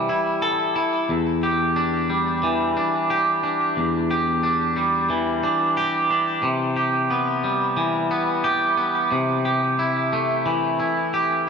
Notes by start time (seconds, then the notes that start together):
Already playing: E3 G3 G4
0.09 E4
0.42 A4
0.76 E4
1.09 E2
1.43 G4
1.76 D4
2.10 G3
2.43 E3
2.77 D4
3.10 G4
3.43 D4
3.77 E2
4.11 G4
4.43 D4
4.76 G3
5.10 E3
5.43 D4
5.77 G4
6.11 D4
6.43 C3
6.76 G4
7.11 B3
7.44 G3
7.77 E3
8.11 B3
8.44 G4
8.77 B3
9.12 C3
9.45 G4
9.79 E4
10.13 A3
10.46 E3
10.80 E4
11.14 G4